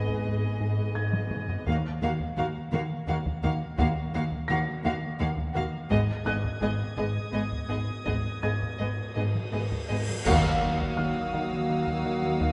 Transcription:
Already playing: double bass section G#1, analog synth bass G#2, cello section G#2, viola section B3, violin section G#4 D#5
0.08 taiko
0.26 analog synth bass G#2
0.61 analog synth bass G#2
0.95 analog synth bass G#2, felt piano G#6
1.13 taiko mid
1.31 analog synth bass G#2, taiko low-mid
1.49 taiko low
1.66 double bass section D#2, cello section D#2, analog synth bass D#3, timpani D#3, viola section A#3, violin section F#4 F5, taiko
2.01 double bass section D#2, cello section D#2, analog synth bass D#3, viola section A#3, violin section F#4 F5
2.20 taiko
2.37 double bass section D#2, cello section D#2, analog synth bass D#3, viola section A#3, violin section F#4 F5
2.72 double bass section D#2, cello section D#2, analog synth bass D#3, viola section A#3, violin section F#4 F5
3.07 double bass section D#2, cello section D#2, analog synth bass D#3, viola section A#3, violin section F#4 F5
3.26 taiko
3.42 double bass section D#2, cello section D#2, analog synth bass D#3, viola section A#3, violin section F#4 F5
3.78 double bass section D#2, cello section D#2, analog synth bass D#3, viola section A#3, violin section F#4 F5, taiko
4.14 double bass section D#2, cello section D#2, analog synth bass D#3, viola section A#3, violin section F#4 F5
4.32 taiko
4.48 double bass section D#2, cello section D#2, analog synth bass D#3, viola section A#3, violin section F#4 F5, felt piano A#6
4.84 double bass section D#2, cello section D#2, analog synth bass D#3, viola section A#3, violin section F#4 F5
5.19 double bass section D#2, cello section D#2, analog synth bass D#3, viola section A#3, violin section F#4 F5
5.37 taiko
5.55 cello section D#2, double bass section D#2, analog synth bass D#3, viola section A#3, violin section F#4 F5
5.90 double bass section G#1, analog synth bass G#2, cello section G#2, viola section B3, violin section G#4 D#5 D#6 G#6, taiko
6.25 double bass section G#1, cello section G#2, analog synth bass G#2, viola section B3, violin section G#4 D#5, felt piano F#6
6.45 taiko
6.61 double bass section G#1, cello section G#2, analog synth bass G#2, viola section B3, violin section G#4 D#5
6.97 double bass section G#1, cello section G#2, analog synth bass G#2, viola section B3, violin section G#4 D#5
7.33 double bass section G#1, analog synth bass G#2, cello section G#2, viola section B3, violin section G#4 D#5
7.52 taiko
7.69 double bass section G#1, analog synth bass G#2, cello section G#2, viola section B3, violin section G#4 D#5
8.05 double bass section G#1, analog synth bass G#2, cello section G#2, viola section B3, violin section G#4 D#5, taiko, cymbal swell
8.42 double bass section G#1, cello section G#2, analog synth bass G#2, viola section B3, violin section G#4 D#5, felt piano G#6
8.62 taiko
8.78 double bass section G#1, cello section G#2, analog synth bass G#2, viola section B3, violin section G#4 D#5
9.15 double bass section G#1, cello section G#2, analog synth bass G#2, viola section B3, violin section G#4 D#5
9.35 taiko mid
9.52 double bass section G#1, analog synth bass G#2, cello section G#2, viola section B3, violin section G#4 D#5
9.72 taiko
9.89 double bass section G#1, cello section G#2, analog synth bass G#2, viola section B3, violin section G#4 D#5
10.09 taiko mid
10.25 cello section D#2, double bass section D#2, timpani D#3, trombone section D#3 F#3, analog synth bass D#3, viola section A#3, french horn section A#3 F#4, violin section F#4 F5 D#6, concert bass drum, taiko, crash, impact
10.62 analog synth bass D#3
10.81 taiko
10.97 analog synth bass D#3, violin section E6, felt piano F6
11.34 analog synth bass D#3
11.52 taiko mid
11.70 analog synth bass D#3
11.87 taiko
12.06 analog synth bass D#3
12.23 taiko mid
12.40 analog synth bass D#3, taiko

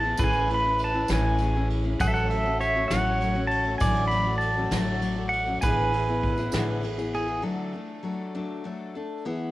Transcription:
Already playing: upright bass A1, pedal steel guitar A5
0.03 steel-string acoustic guitar E3 B3 E4 G#4
0.17 upright bass A1, steel-string acoustic guitar A3 C#4 E4 G#4, pedal steel guitar B4, kick, ride, tambourine
0.24 pedal steel guitar G#5
0.33 tambourine
0.48 steel-string acoustic guitar A3 C#4 E4 G#4, ride
0.54 pedal steel guitar B5
0.63 steel-string acoustic guitar C#4 E4 G#4
0.79 ride, tambourine
0.84 pedal steel guitar A5
0.93 steel-string acoustic guitar C#4 E4 G#4
1.08 upright bass A1, steel-string acoustic guitar A3 C#4 E4 G#4, snare, ride, tambourine
1.13 pedal steel guitar G#5
1.39 steel-string acoustic guitar A3 C#4 E4 G#4, ride, tambourine
1.55 steel-string acoustic guitar C#4 E4 G#4
1.70 ride
1.84 steel-string acoustic guitar C#4 E4 G#4
2.00 upright bass A1, steel-string acoustic guitar A2 E3 F#3 A3 C#4 F#4, pedal steel guitar A4 F#5, kick, ride, tambourine
2.08 pedal steel guitar E5
2.14 pedal steel guitar F#5, tambourine
2.30 steel-string acoustic guitar F#3 A3 C#4 F#4, pedal steel guitar E5, ride
2.45 steel-string acoustic guitar F#3 A3 C#4 F#4
2.60 pedal steel guitar C#5 E5, ride, tambourine
2.76 steel-string acoustic guitar F#3 A3 C#4 F#4
2.88 upright bass A1, steel-string acoustic guitar A2 E3 F#3, pedal steel guitar F#5, snare, ride, tambourine
2.92 steel-string acoustic guitar A3 C#4 F#4
3.21 steel-string acoustic guitar F#3 A3 C#4 F#4, ride, tambourine
3.35 steel-string acoustic guitar F#3 A3 C#4 F#4
3.47 pedal steel guitar A5, ride
3.65 steel-string acoustic guitar F#3 A3 C#4 F#4
3.78 upright bass A1, steel-string acoustic guitar A2 D3 F#3 A3 F#4, pedal steel guitar D5 G#5, kick, ride, tambourine
3.96 tambourine
4.08 steel-string acoustic guitar F#3, pedal steel guitar B5, ride
4.13 steel-string acoustic guitar A3 C#4 F#4
4.26 steel-string acoustic guitar F#3 A3 F#4
4.38 pedal steel guitar A5, ride, tambourine
4.57 steel-string acoustic guitar F#3 A3 C#4 F#4
4.71 upright bass A1, steel-string acoustic guitar A2 D3 F#3 A3 F#4, snare, ride, tambourine
5.01 steel-string acoustic guitar F#3 A3 C#4 F#4, ride, tambourine
5.16 steel-string acoustic guitar F#3 A3 F#4
5.29 pedal steel guitar F#5, ride
5.46 steel-string acoustic guitar F#3 A3 C#4 F#4
5.61 upright bass A1, steel-string acoustic guitar A2 D3 E3 B3 E4 G#4, pedal steel guitar B4 G#5, kick, ride, tambourine
5.92 steel-string acoustic guitar E3 B3 E4 G#4, ride
6.07 steel-string acoustic guitar E3 B3 E4 G#4
6.23 kick, ride
6.37 steel-string acoustic guitar E3 B3 E4 G#4, tambourine
6.52 upright bass A1, steel-string acoustic guitar A2 D3 E3 B3 E4 G#4, snare, ride, tambourine
6.82 steel-string acoustic guitar E3 B3 E4 G#4, ride
6.98 steel-string acoustic guitar E3 B3 E4 G#4, tambourine
7.14 pedal steel guitar G#4, ride
7.28 steel-string acoustic guitar E3 B3 E4 G#4
7.42 steel-string acoustic guitar D3 F#3 A3 D4 A4
7.73 steel-string acoustic guitar A3 D4 A4
8.03 steel-string acoustic guitar F#3 A3 D4 A4
8.35 steel-string acoustic guitar D3 F#3 A3 D4 A4
8.64 steel-string acoustic guitar F#3 A3 D4 A4
8.95 steel-string acoustic guitar A3 D4 A4
9.25 steel-string acoustic guitar E3 B3 E4 G#4

